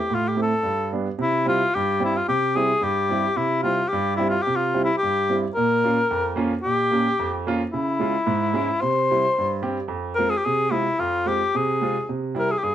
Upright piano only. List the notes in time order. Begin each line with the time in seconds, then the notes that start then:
0.10 A2
0.36 A3 C4 E4
0.63 G2
0.92 G3 B3 D4
1.19 C3
1.46 G3 C4 E4
1.76 G2
2.00 G3 C4 G4
2.28 C3
2.55 G3 C4 E4
2.81 G2
3.09 G3 C4 E4
3.36 C3
3.63 G3 C4 E4
3.93 G2
4.18 G3 C4 E4
4.47 C3
4.74 G3 C4 E4
5.03 G2
5.30 G3 C4 E4
5.57 A#2
5.84 A#3 C#4 F4
6.11 F2
6.36 A#3 C#4 F4
6.65 A#2
6.91 A#3 C#4 G4
7.19 F2
7.47 A#3 C#4 F4
7.74 C#3
7.99 G#3 C#4 F4
8.27 G#2
8.54 G#3 C#4 E4
8.83 C3
9.11 G3 C4 E4
9.38 G2
9.62 G3 C4 G4
9.88 F2
10.18 G#3 C4 F4
10.46 C3
10.71 G#3 C4 F4
10.99 F2
11.26 G#3 C4 F4
11.55 C3
11.81 G#3 C4 F4
12.09 C3
12.35 G3 C4 E4
12.63 G2